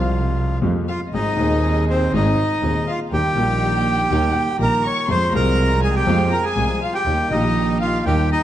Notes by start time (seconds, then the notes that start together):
Already playing: C2 C3 F3 G#3 C4 F4 G4 F5
0.62 F2 F3 G#3 C4 G4
0.88 F4 F5
1.12 G#1 G#2 D#3 G#3 C4 D#4 G#4 D#5
1.37 D#1 D#2 D#3 G#3 C4 D#4 G#4
1.41 G#4
1.88 C4 C5
2.12 G#1 G#2 D#3 G#3 C4 D#4 G#4 D#5
2.62 D#1 D#2 D#3 G#3 C4 D#4 G#4
2.87 F4 F5
3.12 D#2 D#3 G3 A#3 D#4 G4 G5
3.35 A#1 A#2 D#3 G3 A#3 D#4 G4
4.10 D#2 D#3 G3 A#3 D#4 G4
4.58 A#1 A#2 D#3 G3 A#3 D#4 G4 A#4 A#5
4.63 A#5
4.84 C#5 C#6
5.08 F2 F3 G#3 C4 F4 G#4 C5 C6
5.31 C2 C3 F3 G#3 C4 F4 A#4 A#5
5.35 G#4 A#5
5.82 G#4 G#5
5.94 G4 G5
6.06 F2 F3 G#3 C4 F4 G#4
6.31 A#4 A#5
6.45 G#4 G#5
6.56 C2 C3 F3 G#3 C4 F4 G#4
6.82 F4 F5
6.93 G4 G5
7.05 D#2 D#3 G3 A#3 D#4 G4
7.30 A#1 A#2 D#3 G3 A#3 D#4 G4 D#5
7.81 F4 F5
8.05 D#2 D#3 G3 A#3 D#4 G4 G5
8.32 D#4 D#5